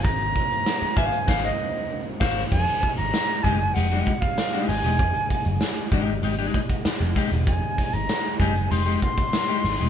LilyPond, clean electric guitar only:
\new Staff \with { instrumentName = "Clean electric guitar" } { \time 4/4 \key f \minor \tempo 4 = 97 r4. <ges' c'' f''>16 r16 <ges' c'' f''>8 r4 <ges' c'' f''>8 | r4. <aes ees' g'>16 r16 <aes ees' g'>16 <aes ees' g'>16 r8. <aes ees' g'>16 r16 <aes ees' g'>16 | r4. <aes ees' g'>16 r16 <aes ees' g'>16 <aes ees' aes'>16 r4 <aes ees' g'>16 r16 | r4. <aes ees' g'>16 r16 <aes ees' g'>16 <aes ees' g'>16 r8. <aes ees' g'>16 r16 <aes ees' g'>16 | }